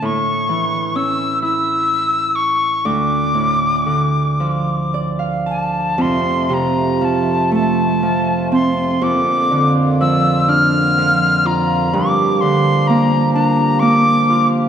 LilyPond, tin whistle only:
\new Staff \with { instrumentName = "Tin whistle" } { \time 6/8 \key f \major \tempo 4. = 41 cis'''4 e'''8 e'''4 cis'''8 | d'''2 r8 a''8 | c'''8 bes''8 a''8 a''4 c'''8 | d'''8. r16 e'''8 f'''4 bes''8 |
d'''8 c'''8 bes''8 bes''8 d'''8. r16 | }